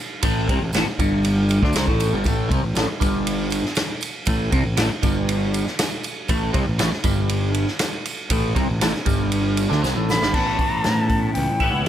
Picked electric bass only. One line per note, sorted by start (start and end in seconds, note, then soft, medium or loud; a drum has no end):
0.23 0.47 A1 medium
0.49 0.60 C2 loud
0.61 0.73 A1 medium
0.73 0.85 A1 medium
0.86 muted picked electric bass stroke soft
0.99 1.58 G1 medium
1.62 1.74 D2 medium
1.75 1.87 C2 medium
1.88 2.11 A1 medium
2.13 2.24 G1 medium
2.25 2.49 A1 medium
2.50 2.62 C2 loud
2.63 2.75 A1 medium
2.75 2.87 A1 medium
2.88 muted picked electric bass stroke soft
3.01 3.60 G1 medium
4.27 4.51 A1 medium
4.52 4.64 C2 medium
4.65 4.77 A1 medium
4.78 4.90 A1 medium
4.92 muted picked electric bass stroke soft
5.03 5.62 G1 loud
6.30 6.53 A1 medium
6.55 6.67 C2 loud
6.68 6.79 A1 medium
6.82 6.93 A1 medium
6.94 muted picked electric bass stroke soft
7.05 7.64 G1 loud
8.30 8.54 A1 medium
8.57 8.69 C2 medium
8.70 8.81 A1 medium
8.83 8.94 A1 medium
8.96 muted picked electric bass stroke soft
9.06 9.66 G1 medium
9.72 9.83 D2 medium
9.84 9.95 C2 medium
9.96 10.20 A1 medium
10.22 10.33 G1 medium
10.34 10.55 A1 medium
10.86 11.29 A2 medium
11.37 11.47 C#2 medium
11.61 11.72 A1 medium
11.72 11.84 C#2 medium